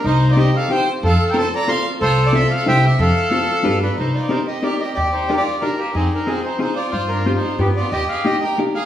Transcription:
0.04 0.47 C2 loud
0.04 0.28 D#4 medium
0.04 0.52 D#4 medium
0.04 0.32 C5 medium
0.31 0.38 F4 medium
0.31 0.39 D5 medium
0.37 0.55 C4 medium
0.37 0.55 D#4 medium
0.37 0.55 G4 medium
0.37 0.54 G4 medium
0.37 0.56 C5 medium
0.37 0.56 D#5 medium
0.56 0.70 A4 medium
0.56 0.72 F5 medium
0.69 0.87 C4 medium
0.69 0.88 D#4 medium
0.69 0.88 G4 medium
0.69 0.88 C5 medium
0.69 0.87 G5 loud
0.73 0.88 C5 medium
1.03 1.14 F2 loud
1.03 1.50 A4 medium
1.03 1.28 A4 medium
1.03 1.30 F5 medium
1.30 1.52 C4 medium
1.30 1.37 A#4 medium
1.30 1.37 G5 medium
1.34 1.52 F4 medium
1.34 1.53 A4 medium
1.34 1.53 C5 medium
1.34 1.55 A5 loud
1.39 1.53 C5 medium
1.55 1.69 D5 medium
1.55 1.70 A#5 loud
1.68 1.85 C4 medium
1.68 1.86 F4 medium
1.68 1.86 A4 medium
1.68 1.86 C5 medium
1.68 1.86 F5 medium
1.68 1.85 C6 loud
2.01 2.44 C2 loud
2.01 2.25 F4 loud
2.01 2.47 A4 medium
2.01 2.27 C5 loud
2.26 2.35 F4 medium
2.26 2.34 D5 medium
2.33 2.51 C4 medium
2.33 2.51 F4 medium
2.33 2.51 A4 medium
2.33 2.51 C5 medium
2.33 2.52 E5 loud
2.37 2.52 A4 medium
2.51 2.67 F5 medium
2.55 2.68 A4 medium
2.66 2.88 C2 loud
2.66 2.84 D4 medium
2.66 2.84 E4 medium
2.66 2.84 G4 medium
2.66 2.84 C5 medium
2.66 2.85 E5 medium
2.66 2.85 G5 loud
2.86 2.99 G4 medium
2.86 3.01 E5 medium
2.99 3.10 F2 loud
2.99 3.79 A4 medium
2.99 3.80 A4 medium
2.99 3.79 F5 medium
3.31 3.49 C4 medium
3.31 3.49 F4 medium
3.31 3.50 A4 medium
3.31 3.50 C5 medium
3.63 3.87 G2 loud
3.63 3.82 D4 medium
3.63 3.82 F4 medium
3.63 3.82 G4 medium
3.63 3.82 B4 medium
3.82 3.96 D4 medium
3.82 3.99 B4 medium
3.96 4.09 C2 medium
3.96 4.13 D#4 medium
3.96 4.46 D#4 medium
3.96 4.16 C5 medium
4.14 4.30 F4 medium
4.14 4.31 D5 medium
4.29 4.48 C4 medium
4.29 4.48 D#4 medium
4.29 4.47 D#4 medium
4.29 4.48 G4 soft
4.29 4.48 A#4 medium
4.29 4.46 C5 medium
4.48 4.62 G4 medium
4.48 4.64 D#5 medium
4.62 4.81 C4 medium
4.62 4.81 D#4 medium
4.62 4.79 G4 medium
4.62 4.81 G4 medium
4.62 4.81 A#4 medium
4.62 4.82 D5 medium
4.80 4.96 G4 medium
4.80 4.97 D#5 medium
4.95 5.39 D#2 loud
4.95 5.43 G4 medium
4.95 5.13 G4 medium
4.95 5.14 D5 medium
5.13 5.28 D#4 medium
5.13 5.29 C5 medium
5.28 5.47 D4 medium
5.28 5.47 D#4 medium
5.28 5.47 G4 soft
5.28 5.37 G4 medium
5.28 5.48 A#4 medium
5.28 5.36 D5 medium
5.37 5.60 F4 medium
5.37 5.63 D5 medium
5.61 5.78 D4 medium
5.61 5.80 D4 medium
5.61 5.80 D#4 medium
5.61 5.80 G4 medium
5.61 5.80 A#4 medium
5.79 5.94 A#3 medium
5.79 5.95 G4 medium
5.95 6.06 F2 loud
5.95 6.11 C4 medium
5.95 6.42 D#4 medium
5.95 6.13 G#4 medium
6.14 6.27 D4 medium
6.14 6.29 A#4 medium
6.26 6.45 C4 medium
6.26 6.44 C4 medium
6.26 6.45 D#4 soft
6.26 6.46 F4 medium
6.26 6.45 G#4 medium
6.44 6.60 D#4 medium
6.44 6.59 C5 medium
6.59 6.77 C4 medium
6.59 6.77 D#4 medium
6.59 6.76 D#4 medium
6.59 6.77 F4 medium
6.59 6.78 G#4 medium
6.59 6.79 C5 medium
6.76 6.91 F4 medium
6.76 6.93 D5 medium
6.91 7.36 G2 loud
6.91 7.39 F4 medium
6.91 7.09 F4 medium
6.91 7.11 C5 medium
7.09 7.25 D4 medium
7.09 7.26 A#4 medium
7.25 7.44 C4 medium
7.25 7.44 D4 medium
7.25 7.35 F4 medium
7.25 7.44 F4 medium
7.25 7.44 G4 medium
7.25 7.33 C5 medium
7.35 7.58 D#4 medium
7.35 7.60 C5 medium
7.58 7.80 G2 medium
7.58 7.77 B3 medium
7.58 7.90 B3 medium
7.58 7.68 B3 medium
7.58 7.77 D4 medium
7.58 7.77 F4 medium
7.58 7.68 G4 medium
7.58 7.77 G4 medium
7.77 7.91 F4 medium
7.77 7.93 D5 medium
7.92 8.04 D#2 loud
7.92 8.09 G4 medium
7.92 8.39 G4 medium
7.92 8.10 D#5 medium
8.09 8.25 G#4 medium
8.09 8.25 F5 medium
8.25 8.43 A#3 medium
8.25 8.43 D4 medium
8.25 8.43 D#4 medium
8.25 8.43 G4 medium
8.25 8.44 D#5 medium
8.29 8.43 G4 medium
8.43 8.58 A#4 medium
8.43 8.58 G5 medium
8.58 8.76 A#3 medium
8.58 8.76 D4 medium
8.58 8.77 D#4 medium
8.58 8.76 G4 medium
8.75 8.85 G#4 medium
8.75 8.85 F5 medium

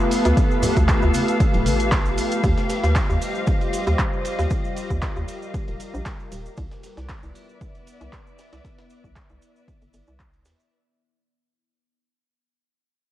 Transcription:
0.00 2.40 A3 medium
0.00 2.44 B3 medium
0.00 2.40 F4 medium
0.00 7.44 G4 medium
0.00 3.45 A4 medium
0.00 2.40 B4 medium
0.00 6.58 F5 medium
0.11 open hi-hat loud
0.11 ride medium
0.11 cabasa loud
0.25 0.32 D2 medium
0.25 snare soft
0.25 closed hi-hat medium
0.25 cabasa soft
0.37 kick loud
0.37 closed hi-hat soft
0.37 ride medium
0.37 cabasa soft
0.51 cabasa soft
0.63 open hi-hat loud
0.63 ride medium
0.63 low conga medium
0.63 cabasa medium
0.77 0.92 D2 medium
0.77 kick medium
0.77 closed hi-hat medium
0.77 cabasa soft
0.89 kick loud
0.89 snare loud
0.89 clap loud
0.89 closed hi-hat soft
0.89 ride medium
0.89 cabasa medium
1.02 1.10 D2 medium
1.02 cabasa soft
1.14 open hi-hat medium
1.14 ride medium
1.14 high conga medium
1.14 cabasa medium
1.28 closed hi-hat medium
1.28 cabasa soft
1.40 kick loud
1.40 closed hi-hat soft
1.40 ride medium
1.40 cabasa soft
1.54 1.68 D1 medium
1.54 ride soft
1.54 cabasa soft
1.66 2.23 A1 medium
1.66 open hi-hat loud
1.66 ride medium
1.66 high conga medium
1.66 cabasa medium
1.80 closed hi-hat medium
1.80 cabasa soft
1.92 kick loud
1.92 snare loud
1.92 clap loud
1.92 closed hi-hat soft
1.92 ride medium
1.92 cabasa soft
2.06 cabasa soft
2.18 open hi-hat medium
2.18 ride medium
2.18 cabasa medium
2.32 closed hi-hat medium
2.32 cabasa soft
2.44 2.52 D#2 loud
2.44 6.54 G3 medium
2.44 6.54 F4 medium
2.44 4.49 C5 medium
2.44 kick loud
2.44 ride medium
2.44 cabasa soft
2.58 snare soft
2.58 cabasa soft
2.70 snare soft
2.70 ride medium
2.70 cabasa medium
2.84 2.99 D#2 medium
2.84 snare soft
2.84 cabasa soft
2.94 6.58 D#5 medium
2.94 kick loud
2.94 snare loud
2.94 clap loud
2.94 ride medium
2.94 cabasa medium
3.09 3.17 D#2 medium
3.09 cabasa soft
3.21 open hi-hat medium
3.21 cabasa medium
3.35 cabasa soft
3.47 kick loud
3.47 ride medium
3.47 cabasa soft
3.61 ride soft
3.61 cabasa soft
3.73 ride medium
3.73 cabasa medium
3.87 3.94 D#2 medium
3.87 ride soft
3.87 cabasa soft
3.99 kick loud
3.99 snare loud
3.99 clap loud
3.99 ride medium
3.99 cabasa soft
4.13 cabasa soft
4.25 ride medium
4.25 cabasa medium
4.39 4.46 D#2 medium
4.39 snare soft
4.39 cabasa soft
4.50 6.56 A#4 medium
4.50 kick loud
4.50 ride medium
4.50 cabasa soft
4.65 cabasa soft
4.77 ride medium
4.77 cabasa medium
4.90 5.06 D#2 medium
4.90 kick medium
4.90 cabasa soft
5.02 kick loud
5.02 snare loud
5.02 clap loud
5.02 ride medium
5.02 cabasa soft
5.16 5.24 D#2 medium
5.16 cabasa soft
5.28 ride medium
5.28 cabasa medium
5.42 cabasa soft
5.54 kick loud
5.54 ride medium
5.54 cabasa medium
5.68 5.75 D#1 medium
5.68 ride soft
5.68 cabasa soft
5.80 ride medium
5.80 cabasa medium
5.94 6.01 A#1 loud
5.94 cabasa soft
6.06 kick loud
6.06 snare loud
6.06 clap loud
6.06 ride medium
6.06 cabasa soft
6.20 cabasa soft
6.32 6.48 D#1 medium
6.32 ride medium
6.32 cabasa medium
6.46 cabasa soft
6.57 6.66 C2 medium
6.57 10.67 B3 medium
6.57 10.67 E4 medium
6.57 10.67 D5 medium
6.57 kick loud
6.57 ride medium
6.57 cabasa soft
6.72 10.71 B4 medium
6.72 snare soft
6.72 cabasa soft
6.83 snare soft
6.83 ride medium
6.83 cabasa medium
6.97 7.12 C2 medium
6.97 10.71 D5 medium
6.97 snare soft
6.97 cabasa soft
7.09 kick loud
7.09 snare loud
7.09 clap loud
7.09 ride medium
7.09 cabasa soft
7.23 7.31 C2 medium
7.23 10.71 E5 medium
7.23 cabasa soft
7.35 open hi-hat medium
7.35 cabasa medium
7.49 cabasa soft
7.61 kick loud
7.61 ride medium
7.61 cabasa soft
7.75 ride soft
7.75 cabasa soft
7.87 ride medium
7.87 cabasa medium
8.01 8.08 C2 medium
8.01 ride soft
8.01 cabasa soft
8.13 kick loud
8.13 snare loud
8.13 clap loud
8.13 ride medium
8.13 cabasa soft
8.27 cabasa soft
8.38 snare medium
8.38 ride medium
8.38 cabasa medium
8.52 8.60 C2 medium
8.52 snare loud
8.52 ride medium
8.52 cabasa soft
8.65 kick loud
8.65 snare loud
8.65 ride medium
8.65 cabasa soft
8.78 snare loud
8.78 ride medium
8.78 cabasa soft
8.90 ride medium
8.90 cabasa medium
9.04 9.19 C2 medium
9.04 kick medium
9.04 cabasa soft
9.16 kick loud
9.16 snare loud
9.16 clap loud
9.16 ride medium
9.16 cabasa soft
9.29 9.37 C2 medium
9.29 cabasa soft
9.42 ride medium
9.42 cabasa medium
9.56 cabasa soft
9.68 kick loud
9.68 ride medium
9.68 cabasa soft
9.82 9.89 G1 medium
9.82 ride soft
9.82 cabasa soft
9.93 10.02 G1 medium
9.93 ride medium
9.93 cabasa medium
10.07 10.47 C2 medium
10.07 cabasa soft
10.20 kick loud
10.20 clap loud
10.20 ride medium
10.20 cabasa soft
10.33 ride soft
10.33 cabasa soft
10.45 10.54 E2 medium
10.45 snare medium
10.45 ride medium
10.45 cabasa medium
10.60 cabasa soft

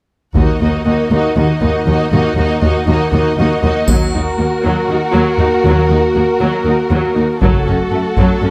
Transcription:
0.35 0.44 D#2 soft
0.35 0.45 D#2 soft
0.35 0.60 A#3 soft
0.35 0.60 D#4 soft
0.35 0.60 F#4 soft
0.35 0.60 D#5 soft
0.35 taiko soft
0.61 0.69 D#2 soft
0.61 0.70 D#2 soft
0.61 0.85 A#3 soft
0.61 0.85 D#4 soft
0.61 0.86 F#4 soft
0.61 0.86 D#5 soft
0.86 0.94 D#2 soft
0.86 1.11 A#3 soft
0.86 1.11 D#4 soft
0.86 1.11 F#4 soft
0.86 1.11 D#5 soft
1.11 1.19 D#2 soft
1.11 1.20 D#2 soft
1.11 1.36 A#3 soft
1.11 1.36 D#4 soft
1.11 1.37 F#4 soft
1.11 1.37 D#5 soft
1.36 1.44 D#2 soft
1.36 1.45 D#2 soft
1.36 1.61 A#3 soft
1.36 1.61 D#4 soft
1.36 1.61 F#4 soft
1.36 1.61 D#5 soft
1.61 1.69 D#2 soft
1.61 1.70 D#2 soft
1.61 1.86 A#3 soft
1.61 1.86 D#4 soft
1.61 1.86 F#4 soft
1.61 1.86 D#5 soft
1.87 1.95 D#2 soft
1.87 2.10 A#3 soft
1.87 2.10 D#4 soft
1.87 2.11 F#4 soft
1.87 2.11 D#5 soft
2.11 2.20 D#2 soft
2.11 2.21 D#2 soft
2.11 2.36 A#3 soft
2.11 2.35 D#4 soft
2.11 2.37 F#4 soft
2.11 2.37 D#5 soft
2.37 2.45 D#2 soft
2.37 2.46 D#2 soft
2.37 2.61 A#3 soft
2.37 2.61 D#4 soft
2.37 2.60 F#4 soft
2.37 2.60 D#5 soft
2.61 2.70 D#2 soft
2.61 2.71 D#2 soft
2.61 2.86 A#3 soft
2.61 2.86 D#4 soft
2.61 2.87 F#4 soft
2.61 2.87 D#5 soft
2.87 2.96 D#2 soft
2.87 3.11 A#3 soft
2.87 3.11 D#4 soft
2.87 3.11 F#4 soft
2.87 3.11 D#5 soft
3.12 3.20 D#2 soft
3.12 3.21 D#2 soft
3.12 3.36 A#3 soft
3.12 3.37 D#4 soft
3.12 3.37 F#4 soft
3.12 3.37 D#5 soft
3.38 3.46 D#2 soft
3.38 3.47 D#2 soft
3.38 3.62 A#3 soft
3.38 3.62 D#4 soft
3.38 3.62 F#4 soft
3.38 3.62 D#5 soft
3.62 3.70 D#2 soft
3.62 3.71 D#2 soft
3.62 3.88 A#3 soft
3.62 3.88 D#4 soft
3.62 3.88 F#4 soft
3.62 3.88 D#5 soft
3.87 4.12 D#2 soft
3.87 3.97 D#2 soft
3.87 4.12 F#3 soft
3.87 7.37 A#3 soft
3.87 7.37 F#4 soft
3.87 7.38 F#4 soft
3.87 7.38 A#4 soft
3.87 taiko soft
3.87 triangle soft
4.13 4.22 D#2 soft
4.13 4.21 D#4 soft
4.38 4.46 D#2 soft
4.38 4.47 A#3 soft
4.63 4.73 D#2 soft
4.63 4.87 F#3 soft
4.89 4.98 D#2 soft
4.89 4.97 D#4 soft
5.14 5.22 D#2 soft
5.14 5.38 F#3 soft
5.39 5.47 D#2 soft
5.39 5.47 D#4 soft
5.65 5.73 D#2 soft
5.65 5.89 D#2 soft
5.65 5.88 F#3 soft
5.90 5.98 D#2 soft
5.90 5.98 D#4 soft
6.15 6.23 D#2 soft
6.15 6.23 A#3 soft
6.40 6.48 D#2 soft
6.40 6.64 F#3 soft
6.65 6.73 D#2 soft
6.65 6.74 D#4 soft
6.91 6.99 D#2 soft
6.91 7.14 F#3 soft
7.15 7.25 D#2 soft
7.15 7.23 D#4 soft
7.40 7.65 F#1 soft
7.40 7.49 F#2 soft
7.40 7.65 F#3 soft
7.40 8.50 A3 soft
7.40 8.50 F#4 soft
7.40 8.50 A4 soft
7.40 taiko soft
7.66 7.75 F#2 soft
7.66 7.74 C#4 soft
7.91 7.99 F#2 soft
7.91 8.00 A3 soft
8.17 8.25 F#2 soft
8.17 8.41 F#3 soft
8.17 taiko soft
8.42 8.50 F#2 soft
8.42 8.50 C#4 soft

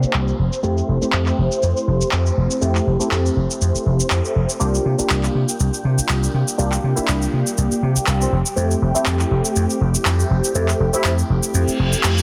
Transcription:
0.00 0.37 A#3 medium
0.00 0.37 D4 medium
0.00 0.37 F4 medium
0.00 0.38 G4 loud
0.00 4.61 C5 medium
0.00 4.61 C6 medium
0.00 muted slap bass stroke soft
0.00 cabasa medium
0.13 0.30 C2 medium
0.13 clap loud
0.13 cabasa medium
0.28 cabasa soft
0.39 0.47 F1 medium
0.53 cabasa medium
0.63 0.80 F2 medium
0.63 0.98 A3 medium
0.63 0.98 C4 medium
0.63 0.99 E4 medium
0.63 0.99 G4 loud
0.63 cabasa soft
0.77 cabasa soft
0.88 0.97 F1 medium
1.01 2.59 A3 medium
1.01 2.59 C4 medium
1.01 2.59 E4 medium
1.01 2.60 G4 loud
1.01 muted slap bass stroke soft
1.01 cabasa medium
1.12 1.29 F2 medium
1.12 clap loud
1.12 cabasa soft
1.26 clap soft
1.26 cabasa soft
1.38 1.47 F1 medium
1.52 cabasa medium
1.63 1.71 F2 medium
1.63 cabasa soft
1.77 cabasa soft
1.88 2.01 F1 medium
2.01 muted slap bass stroke soft
2.01 cabasa medium
2.11 2.29 F2 medium
2.11 clap loud
2.11 cabasa medium
2.26 cabasa soft
2.37 2.46 F1 medium
2.51 cabasa medium
2.61 2.78 F2 medium
2.61 2.97 A3 medium
2.61 2.97 C4 medium
2.61 2.97 E4 medium
2.61 2.97 G4 loud
2.61 cabasa soft
2.75 clap soft
2.75 cabasa soft
2.87 2.95 F1 medium
2.99 4.57 A3 medium
2.99 4.57 C4 medium
2.99 4.57 E4 medium
2.99 4.58 G4 loud
2.99 cabasa medium
3.11 3.28 F2 medium
3.11 clap loud
3.11 cabasa soft
3.26 cabasa soft
3.36 3.45 F1 medium
3.51 cabasa medium
3.61 3.70 F2 medium
3.61 cabasa medium
3.75 muted slap bass stroke soft
3.75 cabasa soft
3.86 3.99 F1 medium
4.00 muted slap bass stroke soft
4.00 cabasa medium
4.10 4.19 F2 medium
4.10 clap loud
4.10 cabasa medium
4.25 cabasa soft
4.36 4.44 F1 medium
4.49 cabasa medium
4.59 4.77 C2 loud
4.59 4.95 A#3 medium
4.59 4.95 D4 medium
4.59 4.95 F4 medium
4.59 12.22 G4 medium
4.59 4.96 G4 loud
4.59 12.22 G5 medium
4.59 cabasa medium
4.74 cabasa soft
4.85 4.94 C3 medium
4.98 6.56 A#3 medium
4.98 6.56 D4 medium
4.98 6.56 F4 medium
4.98 6.56 G4 loud
4.98 muted slap bass stroke soft
4.98 cabasa medium
5.09 5.26 C2 medium
5.09 clap loud
5.09 cabasa soft
5.23 clap soft
5.23 cabasa soft
5.35 5.43 C3 medium
5.49 cabasa medium
5.60 5.68 C2 medium
5.60 cabasa medium
5.74 cabasa soft
5.85 5.98 C3 medium
5.98 muted slap bass stroke soft
5.98 cabasa medium
6.09 6.25 C2 medium
6.09 clap loud
6.09 cabasa medium
6.23 cabasa soft
6.34 6.42 C3 medium
6.48 cabasa medium
6.58 6.75 C2 medium
6.58 6.93 A#3 medium
6.58 6.93 D4 medium
6.58 6.94 F4 medium
6.58 6.94 G4 loud
6.58 cabasa medium
6.72 clap soft
6.72 cabasa soft
6.84 6.92 C3 medium
6.96 8.30 A#3 loud
6.96 8.30 D4 medium
6.96 7.17 E4 medium
6.96 8.31 F4 medium
6.96 8.31 G4 loud
6.96 muted slap bass stroke soft
6.96 cabasa medium
7.07 7.25 C2 medium
7.07 clap loud
7.07 cabasa medium
7.22 cabasa soft
7.33 7.42 C3 medium
7.47 cabasa medium
7.58 7.66 C2 medium
7.58 cabasa medium
7.72 muted slap bass stroke soft
7.72 cabasa soft
7.83 7.96 C3 medium
7.96 muted slap bass stroke soft
7.96 cabasa medium
8.06 8.24 C2 medium
8.06 clap loud
8.06 cabasa medium
8.21 8.38 C4 medium
8.21 cabasa soft
8.32 8.41 F1 medium
8.46 cabasa medium
8.56 8.73 F2 medium
8.56 8.92 A3 loud
8.56 8.92 C4 medium
8.56 8.92 E4 medium
8.56 8.92 G4 loud
8.56 cabasa medium
8.71 cabasa soft
8.82 8.90 F1 medium
8.94 10.52 A3 medium
8.94 10.52 C4 medium
8.94 10.53 E4 medium
8.94 10.53 G4 loud
8.94 cabasa medium
9.06 9.23 F2 medium
9.06 clap loud
9.06 cabasa medium
9.19 clap soft
9.19 cabasa soft
9.31 9.40 F1 medium
9.45 cabasa medium
9.56 9.65 F2 medium
9.56 cabasa medium
9.70 cabasa soft
9.81 9.94 F1 loud
9.95 muted slap bass stroke soft
9.95 cabasa medium
10.05 10.22 F2 medium
10.05 clap loud
10.05 cabasa medium
10.20 cabasa soft
10.30 10.39 F1 medium
10.44 cabasa medium
10.55 10.71 F2 medium
10.55 10.90 A3 loud
10.55 10.90 C4 medium
10.55 10.91 E4 medium
10.55 10.91 G4 loud
10.55 cabasa medium
10.68 clap soft
10.68 cabasa soft
10.80 10.88 F1 medium
10.93 12.22 A3 medium
10.93 12.22 C4 medium
10.93 12.22 E4 medium
10.93 11.14 E4 medium
10.93 12.22 G4 loud
10.93 muted slap bass stroke soft
10.93 cabasa medium
11.04 11.21 F2 medium
11.04 clap loud
11.04 cabasa medium
11.19 cabasa soft
11.30 11.38 F1 medium
11.43 cabasa medium
11.54 11.63 F2 medium
11.54 reverse cymbal medium
11.54 cabasa medium
11.68 muted slap bass stroke soft
11.68 cabasa soft
11.79 11.93 F1 medium
11.93 muted slap bass stroke soft
11.93 cabasa medium
12.03 12.20 F2 medium
12.03 clap loud
12.03 cabasa medium
12.18 cabasa soft

